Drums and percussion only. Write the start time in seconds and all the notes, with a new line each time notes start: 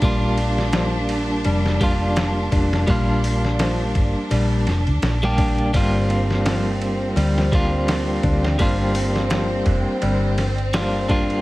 0.02 kick, ride
0.37 ride
0.58 snare
0.73 snare, ride
1.09 ride
1.44 ride
1.66 snare
1.81 kick, ride
2.16 snare, ride
2.52 kick, ride
2.73 snare
2.88 kick, ride
3.24 open hi-hat
3.45 snare
3.59 snare, ride
3.95 kick, ride
4.31 ride
4.67 snare, ride
4.87 ride
5.02 snare, ride
5.38 kick, ride
5.58 ride
5.74 kick, ride
6.10 ride
6.31 snare
6.46 snare, ride
6.82 ride
7.17 ride
7.38 snare
7.52 kick, ride
7.88 snare, ride
8.23 kick, ride
8.45 snare
8.59 kick, ride
8.95 open hi-hat
9.16 snare
9.30 snare, ride
9.66 kick, ride
10.02 ride
10.38 snare, ride
10.58 ride
10.73 snare, ride
11.09 kick, ride
11.30 ride